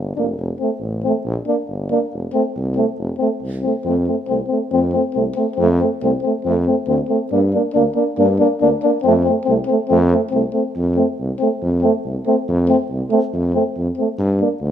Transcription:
Already playing: tuba G1
0.16 tuba F1, euphonium A#3 D4
0.38 tuba F1
0.59 euphonium A3 C4
0.80 tuba A1
1.03 euphonium A3 C4
1.25 tuba A#1
1.46 euphonium A#3 D4
1.68 tuba G1
1.91 euphonium A#3 D4
2.13 tuba F1
2.33 euphonium A3 C4
2.56 tuba C2
2.75 euphonium A3 C4
2.98 tuba F1
3.18 euphonium A3 C4
3.42 tuba C2
3.62 euphonium A3 C4
3.84 tuba F2, euphonium A3 C4
4.06 euphonium A3 C4
4.27 tuba C2, euphonium A3 C4
4.48 euphonium A3 C4
4.71 tuba F2, euphonium A3 C4
4.93 euphonium A3 C4
5.14 tuba C2, euphonium A3 C4
5.35 euphonium A3 C4
5.55 tuba F2, euphonium C4
5.61 euphonium A3
5.80 euphonium A3 C4
6.02 tuba C2, euphonium A3 C4
6.22 euphonium A3 C4
6.44 tuba F2, euphonium A3 C4
6.66 euphonium A3 C4
6.87 tuba D2, euphonium A3 C4
7.08 euphonium A3 C4
7.31 tuba G2, euphonium A#3 D4
7.54 euphonium A#3 D4
7.73 tuba D2, euphonium A#3 D4
7.95 euphonium A#3 D4
8.17 tuba G2, euphonium A#3 D4
8.39 euphonium A#3 D4
8.61 tuba D2, euphonium A#3 D4
8.82 euphonium A#3 D4
9.03 tuba F2, euphonium A3 C4
9.23 euphonium C4
9.28 euphonium A3
9.45 tuba C2, euphonium A3 C4
9.66 euphonium C4
9.70 euphonium A3
9.88 tuba F2, euphonium A3 C4
10.10 euphonium A3 C4
10.30 tuba C2, euphonium A3 C4
10.53 euphonium A3 C4
10.76 tuba F2
10.96 euphonium A3 C4
11.20 tuba C2
11.39 euphonium A3 C4
11.62 tuba F2
11.82 euphonium A3 C4
12.05 tuba C2
12.26 euphonium A3 C4
12.48 tuba F2
12.68 euphonium A3 C4
12.90 tuba C2
13.10 euphonium A3 C4
13.33 tuba F2
13.54 euphonium A3 C4
13.77 tuba F2
13.96 euphonium A3 C4
14.18 tuba G2
14.40 euphonium A#3 D4
14.61 tuba D2

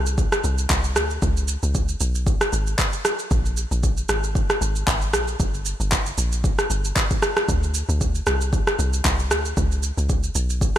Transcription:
Already playing: log drum bass C2
0.06 shaker
0.18 kick, shaker
0.32 cross-stick, shaker
0.44 log drum bass C2, shaker
0.58 shaker
0.70 log drum bass C2, kick, clap, shaker
0.84 shaker
0.96 log drum bass D2, cross-stick, shaker
1.10 shaker
1.22 log drum bass C#2, kick, shaker
1.37 shaker
1.48 shaker
1.63 log drum bass C#2, shaker
1.75 kick, shaker
1.88 shaker
2.00 log drum bass B1, shaker
2.15 shaker
2.27 kick, shaker
2.41 cross-stick, shaker
2.53 log drum bass G#1, shaker
2.67 shaker
2.79 kick, clap, shaker
2.93 shaker
3.05 cross-stick, shaker
3.19 shaker
3.31 log drum bass A#1, kick, shaker
3.46 shaker
3.57 shaker
3.71 log drum bass A#1, shaker
3.83 kick, shaker
3.97 shaker
4.09 log drum bass G#1, cross-stick, shaker
4.24 shaker
4.35 kick, shaker
4.50 cross-stick, shaker
4.61 log drum bass G#1, shaker
4.76 shaker
4.87 log drum bass G#1, kick, clap, shaker
5.01 shaker
5.13 log drum bass A#1, cross-stick, shaker
5.28 shaker
5.40 log drum bass G1, kick, shaker
5.54 shaker
5.65 shaker
5.80 log drum bass G1, shaker
5.92 kick, clap, shaker
6.06 shaker
6.18 log drum bass A#1, shaker
6.32 shaker
6.44 kick, shaker
6.59 cross-stick, shaker
6.70 log drum bass G1, shaker
6.84 shaker
6.96 kick, clap, shaker
7.10 kick, shaker
7.22 cross-stick, shaker
7.37 cross-stick, shaker
7.49 log drum bass D2, kick, shaker
7.63 shaker
7.74 shaker
7.89 log drum bass D2, shaker
8.01 kick, shaker
8.15 shaker
8.27 log drum bass C2, cross-stick, shaker
8.41 shaker
8.53 kick, shaker
8.67 cross-stick, shaker
8.79 log drum bass C2, shaker
8.93 shaker
9.05 log drum bass C2, kick, clap, shaker
9.19 shaker
9.31 log drum bass D2, cross-stick, shaker
9.45 shaker
9.57 log drum bass C#2, kick, shaker
9.72 shaker
9.83 shaker
9.98 log drum bass C#2, shaker
10.09 kick, shaker
10.23 shaker
10.35 log drum bass B1, shaker
10.50 shaker
10.61 kick, shaker

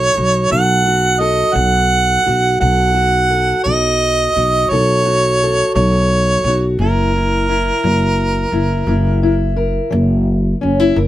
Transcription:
Already playing: steel-string acoustic guitar F#4 A4, harmonica C#5
0.15 upright bass B1, steel-string acoustic guitar F#4
0.50 upright bass B1, steel-string acoustic guitar B2 A4, harmonica F#5
0.86 steel-string acoustic guitar F#4
1.20 steel-string acoustic guitar A4, harmonica D#5
1.53 upright bass B1, steel-string acoustic guitar F#3, harmonica F#5
2.26 upright bass B1, steel-string acoustic guitar F#4
2.60 upright bass B1, steel-string acoustic guitar B2 A4, harmonica F#5
2.94 steel-string acoustic guitar F#4
3.30 steel-string acoustic guitar A4
3.64 upright bass B1, steel-string acoustic guitar F#3, harmonica D#5
4.36 upright bass B1, steel-string acoustic guitar F#4
4.69 upright bass B1, steel-string acoustic guitar B2 A4, harmonica C#5
5.05 steel-string acoustic guitar F#4
5.43 steel-string acoustic guitar A4
5.75 upright bass B1, steel-string acoustic guitar F#3, harmonica C#5
6.44 upright bass B1, steel-string acoustic guitar F#4
6.79 upright bass F#1, steel-string acoustic guitar F#2 E4, harmonica A#4
7.15 steel-string acoustic guitar E4
7.49 steel-string acoustic guitar E4
7.84 upright bass F#1, steel-string acoustic guitar F#3
8.52 upright bass F#1, steel-string acoustic guitar E4
8.87 upright bass F#1, steel-string acoustic guitar F#2 E4
9.23 steel-string acoustic guitar E4
9.56 steel-string acoustic guitar A#4
9.90 upright bass F#1, steel-string acoustic guitar F#3
10.61 upright bass F#1, steel-string acoustic guitar C#4
10.80 steel-string acoustic guitar E4
10.96 upright bass F#1, steel-string acoustic guitar F#2 A#4

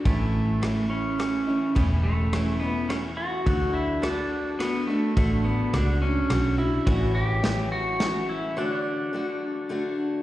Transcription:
0.05 fingered electric bass A1, steel-string acoustic guitar A2 E3 A3 C#4 E4, pedal steel guitar A3, kick, ride
0.62 steel-string acoustic guitar E3 A3 C#4 E4, cross-stick, ride
0.90 pedal steel guitar C#4
1.18 steel-string acoustic guitar E3 A3 C#4 E4, cross-stick, ride
1.47 steel-string acoustic guitar A3 C#4 E4
1.75 fingered electric bass E1, steel-string acoustic guitar A2 E3 A3 C#4 E4, pedal steel guitar B3, kick, ride
2.03 pedal steel guitar A3
2.33 steel-string acoustic guitar E3 A3 C#4 E4, cross-stick, ride
2.60 steel-string acoustic guitar A3 C#4 E4, pedal steel guitar B3
2.89 steel-string acoustic guitar E3 A3 C#4 E4, pedal steel guitar C#4, cross-stick, ride
3.17 pedal steel guitar F#4
3.46 fingered electric bass D2, steel-string acoustic guitar D3 A3 D4 F#4, pedal steel guitar A4 F#5, kick, ride
3.73 pedal steel guitar E4
4.02 steel-string acoustic guitar D3 A3 D4 F#4, pedal steel guitar D4, cross-stick, ride
4.59 steel-string acoustic guitar D3 A3 D4 F#4, pedal steel guitar B3, cross-stick, ride
4.87 pedal steel guitar A3, steel-string acoustic guitar A3 D4 F#4
5.17 fingered electric bass A1, steel-string acoustic guitar D3 A3 D4 F#4, pedal steel guitar A3, kick, ride
5.44 pedal steel guitar B3
5.73 fingered electric bass C#2, steel-string acoustic guitar D3 A3 D4 F#4, pedal steel guitar D4, cross-stick, ride
6.02 steel-string acoustic guitar A3 D4 F#4, pedal steel guitar C#4
6.29 fingered electric bass B1, steel-string acoustic guitar D3 A3 D4 F#4, cross-stick, ride
6.58 steel-string acoustic guitar A3 D4 F#4, pedal steel guitar E4
6.86 fingered electric bass A1, steel-string acoustic guitar A2 E3 A3 C#4 E4, pedal steel guitar F#4 D5 E5, kick, ride
7.07 pedal steel guitar C#5
7.15 pedal steel guitar G4
7.43 steel-string acoustic guitar E3 A3 C#4 E4, snare, ride
7.72 pedal steel guitar F#4
8.00 steel-string acoustic guitar E3 A3 C#4 E4, snare, ride
8.29 pedal steel guitar E4
8.56 steel-string acoustic guitar D3 A3 D4 F#4, pedal steel guitar D4 C#5 F#5
8.77 pedal steel guitar D5
9.13 steel-string acoustic guitar D3 A3 D4 F#4
9.69 steel-string acoustic guitar D3 A3 D4 F#4

